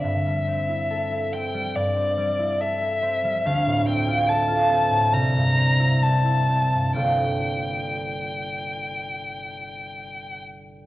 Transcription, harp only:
X:1
M:4/4
L:1/16
Q:1/4=68
K:Gdor
V:1 name="Harp"
[G,,C] G, C E A E C G, G,, C G, E A E C G, | D,, A,, C F A F C A,, C,, G,, C E c E C G,, | [G,,,B,FAc]16 |]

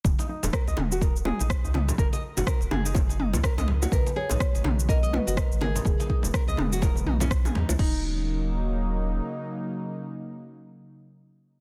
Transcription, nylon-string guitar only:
X:1
M:4/4
L:1/16
Q:"Swing 16ths" 1/4=124
K:Ebphr
V:1 name="Nylon-string guitar"
z E E z B e z G B z A E z E E z | B e z G B z A E z E E z B e z G | B z ^G ^D z D D z B ^d z ^F B z G D | z E E z B e z G B z E ^C z ^G E z |
E2 z12 z2 | z16 |]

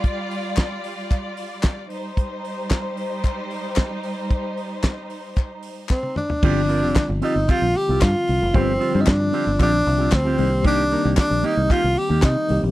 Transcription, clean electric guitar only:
X:1
M:4/4
L:1/16
Q:1/4=113
K:Cm
V:1 name="Clean electric guitar"
z16 | z16 | z16 | [CFG] z [CFB] [CFG] z2 [CFG] z [CFG] z2 [CFG] z4 |
[CFG] z [CFG] [CFG] z2 [CFG] z [CFG] z2 [CFG] z [CFG] [B,EG] z | [B,EG] z [B,EB] [B,EG] z2 [B,EG] z [B,EG] z2 [B,EG] z4 |]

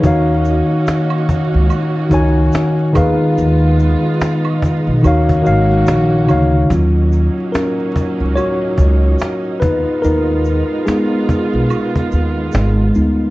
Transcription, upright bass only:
X:1
M:4/4
L:1/16
Q:"Swing 16ths" 1/4=72
K:Ebm
V:1 name="Upright bass" clef=bass
E,,3 z4 D,, z2 D,,2 z2 E,, z | E,,3 z4 C,, E,,2 A,,,2 B,,,2 =D,,2 | E,,3 z4 D,, z2 D,,2 z2 E,, z | E,,3 z4 C,, z2 E,,2 A,,,2 =D,,2 |]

